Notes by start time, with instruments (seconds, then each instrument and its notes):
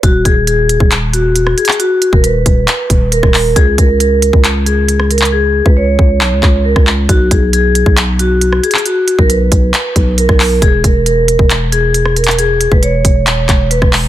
0.03 808-style bass D#1, vibraphone F#4, kick, closed hi-hat
0.25 808-style bass D#1, vibraphone G#4, kick, closed hi-hat
0.47 vibraphone G#4, closed hi-hat
0.69 closed hi-hat
0.80 808-style bass D#1, kick
0.91 clap, closed hi-hat
1.13 vibraphone F#4, closed hi-hat
1.36 closed hi-hat
1.47 cross-stick
1.58 vibraphone G#4, closed hi-hat
1.65 clap, closed hi-hat
1.72 closed hi-hat
1.80 vibraphone F#4, closed hi-hat
2.02 closed hi-hat
2.13 808-style bass D#1, vibraphone A#4, kick
2.24 vibraphone B4, closed hi-hat
2.46 808-style bass D#1, kick, closed hi-hat
2.68 clap, closed hi-hat
2.90 808-style bass D#1, kick, closed hi-hat
3.12 vibraphone A#4, closed hi-hat
3.23 808-style bass D#1, kick, cross-stick
3.34 clap, open hi-hat
3.56 808-style bass C#2, vibraphone G#4, kick, closed hi-hat
3.78 808-style bass C#2, vibraphone A#4, kick, closed hi-hat
4.00 vibraphone A#4, closed hi-hat
4.22 closed hi-hat
4.33 808-style bass C#2, kick
4.44 clap, closed hi-hat
4.66 vibraphone G#4, closed hi-hat
4.88 closed hi-hat
5.00 cross-stick
5.11 vibraphone A#4, closed hi-hat
5.18 clap, closed hi-hat
5.25 closed hi-hat
5.32 vibraphone G#4
5.66 808-style bass C#2, vibraphone B4, kick
5.77 vibraphone C#5
5.99 808-style bass C#2, kick
6.21 808-style bass B1, clap
6.32 808-style bass C#2
6.43 808-style bass C#2, kick, clap
6.65 vibraphone A#4
6.76 808-style bass C#2, kick, cross-stick
6.87 clap
7.09 808-style bass B1, vibraphone F#4, kick, closed hi-hat
7.31 808-style bass B1, vibraphone G#4, kick, closed hi-hat
7.53 vibraphone G#4, closed hi-hat
7.75 closed hi-hat
7.86 808-style bass B1, kick
7.97 clap, closed hi-hat
8.19 vibraphone F#4, closed hi-hat
8.41 closed hi-hat
8.53 cross-stick
8.63 vibraphone G#4, closed hi-hat
8.71 clap, closed hi-hat
8.78 closed hi-hat
8.86 vibraphone F#4, closed hi-hat
9.08 closed hi-hat
9.19 808-style bass B1, vibraphone A#4, kick
9.30 vibraphone B4, closed hi-hat
9.52 808-style bass B1, kick, closed hi-hat
9.74 clap, closed hi-hat
9.96 808-style bass B1, kick, closed hi-hat
10.18 vibraphone A#4, closed hi-hat
10.29 808-style bass B1, kick, cross-stick
10.40 clap, open hi-hat
10.62 808-style bass E1, vibraphone G#4, kick, closed hi-hat
10.84 808-style bass E1, vibraphone A#4, kick, closed hi-hat
11.06 vibraphone A#4, closed hi-hat
11.28 closed hi-hat
11.39 808-style bass E1, kick
11.50 clap, closed hi-hat
11.72 vibraphone G#4, closed hi-hat
11.94 closed hi-hat
12.05 cross-stick
12.16 vibraphone A#4, closed hi-hat
12.24 clap, closed hi-hat
12.31 closed hi-hat
12.39 vibraphone G#4, closed hi-hat
12.61 closed hi-hat
12.72 808-style bass E1, vibraphone B4, kick
12.83 vibraphone C#5, closed hi-hat
13.05 808-style bass E1, kick, closed hi-hat
13.27 808-style bass D#1, clap, closed hi-hat
13.38 808-style bass E1
13.49 808-style bass E1, kick, clap, closed hi-hat
13.71 vibraphone B4, closed hi-hat
13.82 808-style bass E1, kick, cross-stick
13.93 clap, open hi-hat